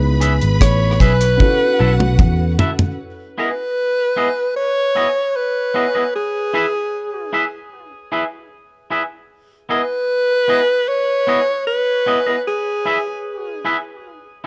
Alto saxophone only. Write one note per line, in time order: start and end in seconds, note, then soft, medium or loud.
0.00 0.17 B4 medium
0.61 1.03 C#5 loud
1.01 2.59 B4 loud
3.39 4.53 B4 loud
4.56 5.38 C#5 loud
5.36 6.15 B4 loud
6.15 7.29 G#4 loud
9.71 10.90 B4 loud
10.88 11.67 C#5 loud
11.67 12.42 B4 loud
12.47 13.62 G#4 medium